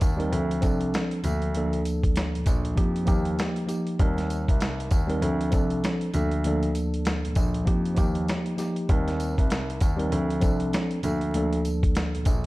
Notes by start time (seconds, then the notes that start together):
Already playing: C4 D#4 A#4
0.01 D#2, kick, closed hi-hat, tambourine
0.17 G3 C4 D#4 A#4, closed hi-hat
0.30 D2 F3 C4 D4 A4, closed hi-hat
0.51 closed hi-hat
0.61 C2 F3 C4 D4 A4, kick, closed hi-hat, tambourine
0.81 closed hi-hat
0.94 snare, closed hi-hat
1.11 closed hi-hat
1.24 D2 F3 A#3 D4 A4, closed hi-hat, tambourine
1.42 closed hi-hat
1.55 D2 F3 A#3 D4 A4, closed hi-hat
1.73 closed hi-hat
1.85 closed hi-hat, tambourine
2.03 kick, closed hi-hat
2.16 snare, closed hi-hat
2.34 A#1, closed hi-hat
2.46 A#1, kick, closed hi-hat, tambourine
2.65 closed hi-hat
2.75 F2 F3 A#3 D#4 G4, kick, closed hi-hat
2.96 closed hi-hat
3.05 D#2 F3 A#3 D#4 G4, kick, closed hi-hat, tambourine
3.25 closed hi-hat
3.39 snare, closed hi-hat
3.56 closed hi-hat
3.66 F3 A#3 D#4 G4, closed hi-hat, tambourine
3.87 closed hi-hat
3.99 D#2 G3 C4 D#4 A#4, kick, closed hi-hat
4.18 snare, closed hi-hat
4.30 closed hi-hat, tambourine
4.48 C2, kick, closed hi-hat
4.60 snare, closed hi-hat
4.80 closed hi-hat
4.91 D#2, kick, closed hi-hat, tambourine
5.07 G3 C4 D#4 A#4, closed hi-hat
5.20 D2 F3 C4 D4 A4, closed hi-hat
5.41 closed hi-hat
5.51 C2 F3 C4 D4 A4, kick, closed hi-hat, tambourine
5.70 closed hi-hat
5.84 snare, closed hi-hat
6.01 closed hi-hat
6.13 D2 F3 A#3 D4 A4, closed hi-hat, tambourine
6.31 closed hi-hat
6.44 D2 F3 A#3 D4 A4, closed hi-hat
6.63 closed hi-hat
6.75 closed hi-hat, tambourine
6.94 closed hi-hat
7.05 snare, closed hi-hat
7.24 A#1, closed hi-hat
7.35 A#1, kick, closed hi-hat, tambourine
7.54 closed hi-hat
7.65 F2 F3 A#3 D#4 G4, kick, closed hi-hat
7.85 closed hi-hat
7.95 D#2 F3 A#3 D#4 G4, kick, closed hi-hat, tambourine
8.15 closed hi-hat
8.28 snare, closed hi-hat
8.46 closed hi-hat
8.56 F3 A#3 D#4 G4, snare, closed hi-hat, tambourine
8.76 closed hi-hat
8.89 D#2 G3 C4 D#4 A#4, kick, closed hi-hat
9.08 snare, closed hi-hat
9.20 closed hi-hat, tambourine
9.38 C2, kick, closed hi-hat
9.50 snare, closed hi-hat
9.70 closed hi-hat
9.80 D#2, kick, closed hi-hat, tambourine
9.97 G3 C4 D#4 A#4, closed hi-hat
10.10 D2 F3 C4 D4 A4, closed hi-hat
10.30 closed hi-hat
10.40 C2 F3 C4 D4 A4, kick, closed hi-hat, tambourine
10.60 closed hi-hat
10.73 snare, closed hi-hat
10.91 closed hi-hat
11.03 D2 F3 A#3 D4 A4, closed hi-hat, tambourine
11.21 closed hi-hat
11.34 D2 F3 A#3 D4 A4, closed hi-hat
11.53 closed hi-hat
11.65 closed hi-hat, tambourine
11.83 kick, closed hi-hat
11.95 snare, closed hi-hat
12.14 A#1, closed hi-hat
12.25 A#1, kick, closed hi-hat, tambourine